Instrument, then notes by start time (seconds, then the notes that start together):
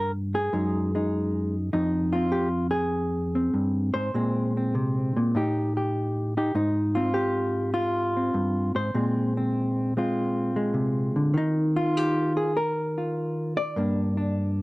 hollow-body jazz guitar
Already playing: G2 A#4
0.35 G#4
0.53 F#2 G#3 D#4
0.95 G#3 D#4
1.73 F2 D#4
2.13 C4 F4
2.32 G4
2.71 G#4
3.35 C4
3.54 G2
3.94 G#2 C5
4.14 A#2 G#3 C4
4.57 C4
4.75 C3
5.17 A#2
5.35 A2 D#4 G4
5.77 G4
6.37 D#4 G4
6.55 G#2 D#4
6.95 C4 F4
7.14 G4
7.74 F4
8.17 C4
8.34 G2
8.75 G#2 C5
8.94 A#2 G#3 C4
9.37 C4
9.97 G#3 C4 F4
10.56 G#3
10.74 C3
11.16 D3
11.34 D#3 D#4
11.76 F4
11.97 G4
12.37 G#4
12.57 A#4
12.98 F4
13.57 D5
13.76 G2 A#3 D4
14.17 D4